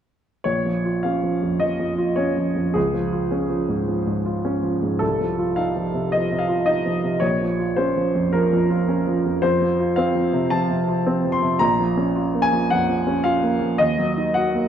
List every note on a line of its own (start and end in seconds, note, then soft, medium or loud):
0.44 1.58 A#1 soft
0.44 1.04 C#5 medium
0.65 0.97 F3 soft
0.85 1.16 F4 soft
1.03 1.36 C#4 soft
1.03 1.61 F5 soft
1.23 1.54 F3 soft
1.42 1.73 F2 soft
1.60 1.91 F3 soft
1.60 2.17 D#5 medium
1.80 2.10 F2 soft
1.98 2.29 F4 soft
2.16 2.49 C#4 soft
2.16 2.75 C#5 medium
2.37 2.68 F3 soft
2.56 2.76 F2 soft
2.74 3.86 C#2 soft
2.74 5.01 G#4 medium
2.94 3.24 F3 soft
3.13 3.43 F4 soft
3.31 3.62 C#4 soft
3.50 3.81 F3 soft
3.69 4.00 G#2 soft
3.88 4.19 F3 soft
4.07 4.38 G#2 soft
4.26 4.56 F4 soft
4.45 4.75 C#4 soft
4.63 4.94 F3 soft
4.82 5.02 G#2 soft
4.99 6.09 C2 soft
4.99 5.57 A4 medium
5.20 5.51 F3 soft
5.39 5.69 F4 soft
5.56 5.87 D#4 soft
5.56 6.12 F5 medium
5.76 6.06 F3 soft
5.94 6.24 C3 soft
6.12 6.43 F3 soft
6.12 6.40 D#5 medium
6.31 6.61 C3 soft
6.39 6.67 F5 medium
6.49 6.79 F4 soft
6.66 6.97 D#4 soft
6.66 7.22 D#5 medium
6.86 7.15 F3 soft
7.03 7.22 C3 soft
7.20 8.30 A#1 soft
7.20 7.77 C#5 medium
7.41 7.71 F3 soft
7.59 7.89 F4 soft
7.76 8.08 C#4 soft
7.76 8.33 C5 medium
7.97 8.27 F3 soft
8.15 8.45 F2 soft
8.33 8.64 F3 soft
8.33 9.44 A#4 medium
8.53 8.83 F2 soft
8.70 9.00 F4 soft
8.89 9.18 C#4 soft
9.07 9.37 F3 soft
9.26 9.42 F2 soft
9.42 10.48 F2 soft
9.42 9.97 C5 medium
9.61 9.90 F3 soft
9.80 10.09 F4 soft
9.96 10.27 C4 soft
9.96 10.51 F5 medium
10.15 10.45 F3 soft
10.33 10.63 C3 soft
10.50 10.81 F3 soft
10.50 11.33 A5 medium
10.70 10.99 C3 soft
10.88 11.17 F4 soft
11.06 11.35 C4 soft
11.25 11.53 F3 soft
11.32 11.60 C6 medium
11.42 11.60 C3 soft
11.59 12.67 A#1 soft
11.59 12.42 A#5 medium
11.80 12.08 F3 soft
11.97 12.26 C#4 soft
12.16 12.45 F4 soft
12.34 12.63 A#3 soft
12.42 12.70 G#5 medium
12.53 12.81 F3 soft
12.70 13.00 F2 soft
12.70 13.24 F#5 medium
12.89 13.17 F3 soft
13.07 13.35 C#4 soft
13.24 13.54 F4 soft
13.24 13.79 F5 medium
13.43 13.72 A#3 soft
13.61 13.80 F3 soft
13.78 14.68 D#2 soft
13.78 14.36 D#5 medium
13.98 14.29 F#3 soft
14.17 14.47 D#4 soft
14.34 14.66 F#4 soft
14.34 14.68 F#5 medium
14.54 14.68 A#3 soft